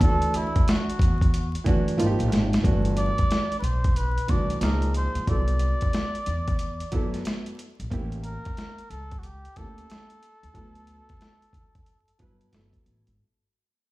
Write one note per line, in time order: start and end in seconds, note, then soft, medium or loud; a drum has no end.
0.00 0.44 D2 medium
0.00 0.87 E3 medium
0.00 0.88 A3 medium
0.00 0.88 D4 medium
0.00 0.89 F#4 medium
0.00 0.38 A4 medium
0.00 kick medium
0.00 closed hi-hat medium
0.22 closed hi-hat soft
0.34 0.72 E4 medium
0.34 closed hi-hat medium
0.56 kick medium
0.56 closed hi-hat soft
0.68 1.67 F#4 medium
0.68 snare loud
0.68 closed hi-hat medium
0.90 closed hi-hat soft
0.99 1.53 E2 medium
0.99 kick medium
0.99 closed hi-hat medium
1.22 kick medium
1.22 closed hi-hat medium
1.34 closed hi-hat medium
1.55 closed hi-hat soft
1.64 1.93 F#2 medium
1.64 1.98 E3 medium
1.64 1.98 A3 medium
1.64 1.99 D4 medium
1.64 1.99 F#4 loud
1.64 kick medium
1.64 closed hi-hat medium
1.88 closed hi-hat medium
1.97 2.15 G#1 loud
1.97 2.54 F3 medium
1.97 2.55 A#3 medium
1.97 2.55 D#4 medium
1.97 2.07 F4 medium
1.97 closed hi-hat loud
2.06 2.59 G4 loud
2.19 2.31 A#1 medium
2.19 closed hi-hat medium
2.31 2.58 G#1 medium
2.31 snare medium
2.31 closed hi-hat medium
2.53 snare medium
2.53 closed hi-hat medium
2.63 3.08 G1 loud
2.63 3.51 E3 medium
2.63 3.51 A3 medium
2.63 3.52 D4 medium
2.63 3.52 F#4 loud
2.63 kick medium
2.63 closed hi-hat medium
2.85 closed hi-hat medium
2.97 3.55 D5 loud
2.97 closed hi-hat medium
3.18 kick medium
3.18 closed hi-hat soft
3.31 snare loud
3.31 closed hi-hat medium
3.52 closed hi-hat soft
3.59 4.16 B1 medium
3.59 3.65 B4 medium
3.64 3.98 C5 loud
3.64 closed hi-hat medium
3.84 kick medium
3.84 closed hi-hat medium
3.96 4.32 B4 loud
3.96 closed hi-hat medium
4.18 closed hi-hat soft
4.28 4.56 C2 medium
4.28 4.61 E3 medium
4.28 4.62 A3 medium
4.28 4.62 D4 medium
4.28 4.63 F#4 medium
4.28 4.62 D5 medium
4.28 kick medium
4.28 closed hi-hat medium
4.50 closed hi-hat medium
4.61 5.05 C#2 medium
4.61 5.18 F3 medium
4.61 5.18 A#3 medium
4.61 5.19 D#4 medium
4.61 5.19 G#4 medium
4.61 4.93 A#4 medium
4.61 snare loud
4.61 closed hi-hat loud
4.82 closed hi-hat soft
4.94 5.31 C5 medium
4.94 closed hi-hat medium
5.15 5.25 C#2 medium
5.15 closed hi-hat medium
5.27 5.71 C2 loud
5.27 6.15 F#3 medium
5.27 6.15 B3 medium
5.27 6.16 E4 medium
5.27 6.16 A4 medium
5.27 7.26 D5 loud
5.27 kick loud
5.27 closed hi-hat medium
5.48 closed hi-hat medium
5.59 closed hi-hat medium
5.81 kick medium
5.81 closed hi-hat soft
5.93 snare loud
5.93 closed hi-hat medium
6.15 closed hi-hat soft
6.26 6.80 E2 medium
6.26 closed hi-hat medium
6.48 kick medium
6.48 closed hi-hat soft
6.59 closed hi-hat medium
6.80 closed hi-hat medium
6.92 7.19 F#2 loud
6.92 7.56 F#3 medium
6.92 7.56 B3 medium
6.92 7.56 E4 medium
6.92 7.57 A4 medium
6.92 kick medium
6.92 closed hi-hat medium
7.14 snare soft
7.14 closed hi-hat medium
7.25 snare loud
7.25 closed hi-hat medium
7.46 closed hi-hat soft
7.59 closed hi-hat medium
7.79 7.89 A#1 medium
7.79 closed hi-hat medium
7.90 8.35 A1 loud
7.90 8.78 A#3 medium
7.90 8.00 C4 medium
7.90 8.79 E4 medium
7.90 8.80 G4 loud
7.90 kick medium
7.90 closed hi-hat medium
7.98 8.82 C#4 medium
8.12 closed hi-hat medium
8.24 8.92 A#4 loud
8.24 closed hi-hat medium
8.45 kick medium
8.45 closed hi-hat soft
8.57 snare loud
8.57 closed hi-hat medium
8.78 closed hi-hat soft
8.90 9.44 C#2 medium
8.90 9.20 A4 loud
8.90 closed hi-hat medium
9.11 kick medium
9.11 closed hi-hat medium
9.19 9.25 F#4 medium
9.23 9.58 G4 loud
9.23 closed hi-hat medium
9.45 closed hi-hat soft
9.56 9.83 D2 medium
9.56 10.19 A#3 medium
9.56 9.65 C4 medium
9.56 10.20 E4 medium
9.56 10.21 G4 medium
9.56 12.54 A4 loud
9.56 kick medium
9.56 closed hi-hat medium
9.63 10.23 C#4 medium
9.78 closed hi-hat medium
9.90 snare loud
9.90 closed hi-hat medium
10.10 closed hi-hat medium
10.23 closed hi-hat medium
10.43 10.53 D#2 medium
10.43 closed hi-hat soft
10.54 10.98 D2 loud
10.54 11.42 F#3 medium
10.54 11.42 B3 medium
10.54 11.43 E4 medium
10.54 11.43 A4 loud
10.54 kick loud
10.54 closed hi-hat medium
10.75 closed hi-hat medium
10.87 closed hi-hat medium
11.09 kick medium
11.09 closed hi-hat medium
11.21 snare loud
11.21 closed hi-hat medium
11.42 closed hi-hat soft
11.53 12.07 F#2 medium
11.53 kick medium
11.53 closed hi-hat medium
11.75 kick medium
11.75 closed hi-hat medium
11.86 closed hi-hat medium
12.08 closed hi-hat soft
12.19 12.47 G2 medium
12.19 12.51 F#3 medium
12.19 12.51 B3 medium
12.19 12.52 E4 medium
12.19 12.54 B4 medium
12.19 kick medium
12.19 closed hi-hat medium
12.41 closed hi-hat medium
12.52 12.70 G1 loud
12.52 13.09 F#3 medium
12.52 13.09 B3 medium
12.52 13.10 E4 medium
12.52 13.10 A4 loud
12.52 snare loud
12.52 closed hi-hat medium
12.73 kick medium
12.73 closed hi-hat medium
12.86 13.03 A1 medium
12.86 closed hi-hat medium
13.07 13.17 G#1 medium
13.07 closed hi-hat medium